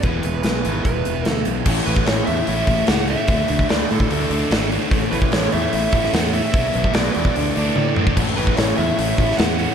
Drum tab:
CC |----------------|x---------------|----------------|----------------|
HH |x-x-x-x-x-x-x-x-|--o-o-o-o-o-o-o-|o-o-o-o-o-o-o-o-|o-o-o-o-o-o-o-o-|
SD |----o-------o---|----o-------o---|----o-------o---|----o------oo---|
T1 |----------------|----------------|----------------|----------------|
T2 |----------------|----------------|----------------|----------------|
BD |o-------o-------|o--o------o-----|o--o---o--------|o--o------o-----|

CC |----------------|x---------------|
HH |o-o-o-o-o-o-----|--o-o-o-o-o-o-o-|
SD |----o-----------|----o------oo---|
T1 |------------o---|----------------|
T2 |--------------o-|----------------|
BD |o--o---o-------o|o--o------o-----|